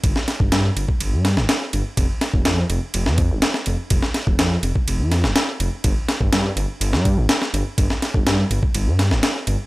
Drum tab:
RD |x-x-x-x-x-x-x-x-|x-x-x-x-x-x-x-x-|x-x-x-x-x-x-x-x-|x-x-x-x-x-x-x-x-|
SD |-oo-o-----ooo---|--o-o----o--oo--|-oo-o-----ooo---|--o-o----o--oo--|
BD |o--o---o--------|o--o------o-----|o--o---o--------|o--o------o-----|

RD |x-x-x-x-x-x-x-x-|
SD |-oo-o-----ooo---|
BD |o--o---o--------|